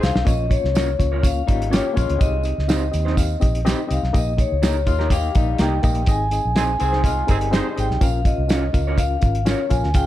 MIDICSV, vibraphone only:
0, 0, Header, 1, 2, 480
1, 0, Start_track
1, 0, Tempo, 483871
1, 267, Time_signature, 4, 2, 24, 8
1, 9983, End_track
2, 0, Start_track
2, 0, Title_t, "Vibraphone"
2, 0, Program_c, 0, 11
2, 28, Note_on_c, 0, 77, 106
2, 256, Note_on_c, 0, 75, 102
2, 274, Note_off_c, 0, 77, 0
2, 499, Note_on_c, 0, 73, 83
2, 509, Note_off_c, 0, 75, 0
2, 1236, Note_on_c, 0, 77, 89
2, 1244, Note_off_c, 0, 73, 0
2, 1677, Note_off_c, 0, 77, 0
2, 1732, Note_on_c, 0, 73, 76
2, 2191, Note_on_c, 0, 75, 95
2, 2213, Note_off_c, 0, 73, 0
2, 2635, Note_off_c, 0, 75, 0
2, 2671, Note_on_c, 0, 75, 72
2, 3589, Note_off_c, 0, 75, 0
2, 3889, Note_on_c, 0, 77, 80
2, 4124, Note_off_c, 0, 77, 0
2, 4132, Note_on_c, 0, 75, 86
2, 4363, Note_on_c, 0, 73, 78
2, 4365, Note_off_c, 0, 75, 0
2, 5034, Note_off_c, 0, 73, 0
2, 5080, Note_on_c, 0, 77, 91
2, 5520, Note_off_c, 0, 77, 0
2, 5566, Note_on_c, 0, 79, 93
2, 6046, Note_on_c, 0, 80, 105
2, 6050, Note_off_c, 0, 79, 0
2, 6483, Note_off_c, 0, 80, 0
2, 6520, Note_on_c, 0, 80, 82
2, 7433, Note_off_c, 0, 80, 0
2, 7728, Note_on_c, 0, 79, 89
2, 7956, Note_on_c, 0, 77, 85
2, 7963, Note_off_c, 0, 79, 0
2, 8192, Note_on_c, 0, 75, 91
2, 8198, Note_off_c, 0, 77, 0
2, 8913, Note_on_c, 0, 77, 97
2, 8931, Note_off_c, 0, 75, 0
2, 9356, Note_off_c, 0, 77, 0
2, 9401, Note_on_c, 0, 73, 81
2, 9621, Note_on_c, 0, 80, 89
2, 9641, Note_off_c, 0, 73, 0
2, 9868, Note_on_c, 0, 79, 113
2, 9871, Note_off_c, 0, 80, 0
2, 9983, Note_off_c, 0, 79, 0
2, 9983, End_track
0, 0, End_of_file